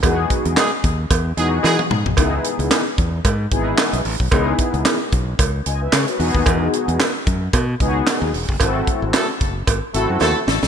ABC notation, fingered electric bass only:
X:1
M:4/4
L:1/16
Q:"Swing 16ths" 1/4=112
K:C#m
V:1 name="Fingered electric bass" clef=bass
E,,2 z E,, z2 D,,2 E,,2 E,,2 E, z G,, B,,, | C,,2 z C,, z2 E,,2 G,,2 G,,,2 z B,,, A,,, B,,, | C,,2 z C,, z2 B,,,2 C,,2 C,,2 C, z E,, D,, | E,,2 z E,, z2 F,,2 B,,2 C,,2 z D,, E,,, F,,, |
G,,,2 z G,,, z2 F,,,2 G,,, z G,,, F,, D,, z A,,, ^B,,, |]